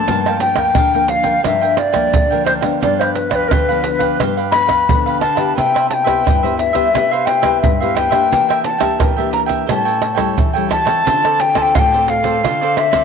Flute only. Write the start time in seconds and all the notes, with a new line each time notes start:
Already playing: A5
0.40 G5
1.09 F5
1.45 E5
1.77 D5
2.46 C5
2.81 D5
2.99 C5
3.14 B4
3.31 D5
3.35 B4
3.48 A#4
3.52 B4
4.51 B5
5.20 A5
5.57 G5
5.89 A5
5.94 G5
6.58 E5
7.11 F5
7.26 G5
7.61 E5
7.80 F5
7.95 G5
8.64 A5
9.33 A#5
9.69 A5
10.71 A5
11.41 G5
11.58 A5
11.62 G5
11.75 F5
11.79 G5
12.09 F5
12.77 E5